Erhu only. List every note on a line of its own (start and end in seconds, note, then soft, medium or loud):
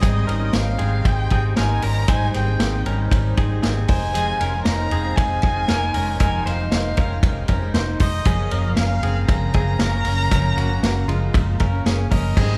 0.00 0.56 D#5 medium
0.54 1.08 F5 loud
1.06 1.31 G5 loud
1.31 1.43 G5 medium
1.57 1.85 G#5 loud
1.84 2.11 A#5 loud
2.09 2.35 G#5 loud
2.36 3.08 G5 medium
3.88 4.61 G#5 loud
4.65 5.17 A#5 loud
5.16 6.19 G#5 loud
6.20 6.49 G#5 loud
6.48 7.50 F5 medium
8.01 8.74 D#5 loud
8.76 9.24 F5 loud
9.28 11.81 A#5 loud
12.11 12.58 D#5 loud